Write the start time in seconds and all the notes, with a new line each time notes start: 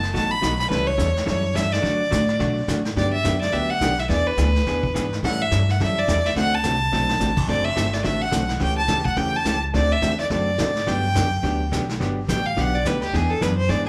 Already playing: F#1 A5
0.03 snare
0.14 A1 B2 F#3 A3 D#4 F#4 A5, brush sweep, kick, snare
0.31 B5
0.41 B1 B2 F#3 A3 D#4 F#4, kick, snare, hi-hat pedal
0.59 B5, snare
0.70 C#2 E3 G3 C#4 E4 A4 B4, brush sweep, kick, snare
0.87 C#5
0.98 E2 E3 G3 C#4 E4 A4, kick, snare, hi-hat pedal
1.16 snare
1.26 F#2 E3 G3 C#4 E4 A4 C#5, brush sweep, kick, snare
1.54 G2 E3 G3 C#4 E4 A4 E5, kick, snare, hi-hat pedal
1.73 D5, snare
1.82 D3 F#3 A3 D4 F#4, brush sweep, kick, snare
2.11 A2 D3 F#3 A3 D4 F#4, kick, snare, hi-hat pedal
2.29 snare
2.39 B2 D3 F#3 A3 D4 F#4, brush sweep, kick, snare
2.68 A2 D3 F#3 A3 D4 F#4, kick, snare, hi-hat pedal
2.85 snare
2.96 G2 D3 F#3 B3 D4 G4 D5, brush sweep, kick, snare
3.13 E5
3.24 F#2 D3 F#3 B3 D4 G4, kick, snare, hi-hat pedal
3.41 D5, snare
3.52 D2 D3 F#3 B3 D4 G4 E5, brush sweep, kick, snare
3.70 F#5
3.81 B1 D3 F#3 B3 D4 G4, kick, snare, hi-hat pedal
3.98 E5, snare
4.09 E2 E3 B3 D4 G#4 D5, brush sweep, kick, snare
4.27 B4
4.37 D2 E3 B3 D4 G#4, kick, snare, hi-hat pedal
4.55 snare
4.66 E2 E3 B3 D4 G#4, brush sweep, kick, snare
4.83 kick
4.94 G#2 E3 B3 D4 G#4, kick, snare, hi-hat pedal
5.12 snare
5.23 A2 E3 G3 C#4 E4 A4 F#5, brush sweep, kick, snare
5.41 E5
5.51 G2 E3 G3 C#4 E4 A4, kick, snare, hi-hat pedal
5.69 F#5, snare
5.80 F#2 E3 G3 C#4 E4 A4 E5, brush sweep, kick, snare
5.99 D5
6.08 E2 E3 G3 C#4 E4 A4, kick, snare, hi-hat pedal
6.25 E5, snare
6.36 D2 D3 A3 C4 F#4 A4 F#5, brush sweep, kick, snare
6.55 A5
6.63 C2 D3 A3 C4 F#4 A4, kick, snare, hi-hat pedal
6.92 B1 D3 A3 C4 F#4 A4, snare
7.09 snare
7.20 A1 D3 A3 C4 F#4 A4, snare, hi-hat pedal
7.37 kick, crash
7.48 F#1 D3 A3 C4 F#4 A4 D5, brush sweep, kick, snare
7.65 E5
7.76 G1 D3 A3 C4 F#4 A4, kick, snare, hi-hat pedal
7.93 D5, snare
8.04 A1 D3 A3 C4 F#4 A4 E5, brush sweep, kick, snare
8.21 F#5
8.31 B1 D3 A3 C4 F#4 A4, kick, snare, hi-hat pedal
8.49 snare
8.59 C#2 C#3 E3 A3 C#4 G4 G5, brush sweep, kick, snare
8.78 A5
8.88 D2 C#3 E3 A3 C#4 G4, kick, snare, hi-hat pedal
9.05 F#5, kick
9.16 E2 C#3 E3 A3 C#4 G4 G5, brush sweep, kick, snare
9.36 A5
9.45 C#2 C#3 E3 A3 C#4 G4, kick, snare, hi-hat pedal
9.74 D2 D3 A3 C4 F#4 A4 D5, brush sweep, kick, snare
9.92 E5
10.02 E2 D3 A3 C4 F#4 A4, kick, snare, hi-hat pedal
10.19 D5, snare
10.30 F#2 D3 A3 C4 F#4 A4 D5, brush sweep, kick, snare
10.58 A2 D3 A3 C4 F#4 A4, kick, snare, hi-hat pedal
10.75 snare
10.87 G2 D3 F#3 B3 D4 G4 G5, brush sweep, kick, snare
11.15 F#2 D3 F#3 B3 D4 G4, kick, snare, hi-hat pedal
11.43 D2 D3 F#3 B3 D4 G4, brush sweep, kick, snare
11.72 B1 D3 F#3 B3 D4 G4, kick, snare, hi-hat pedal
11.89 snare
12.00 G1 D3 F#3 B3 D4 G4, brush sweep, kick, snare
12.28 A1 D3 F#3 B3 D4 G4 G5, kick, snare, hi-hat pedal
12.46 F5
12.57 B1 D3 F#3 B3 D4 G4 F#5, brush sweep, kick, snare
12.75 D5
12.85 D2 D3 F#3 B3 D4 G4 B4, kick, snare, hi-hat pedal
13.02 G4, snare
13.13 E2 E3 B3 D4 G#4, brush sweep, kick, snare
13.30 A4
13.41 F#2 E3 B3 D4 G#4 B4, kick, snare, hi-hat pedal
13.57 C5
13.69 G#2 E3 B3 D4 G#4 D5, brush sweep, kick, snare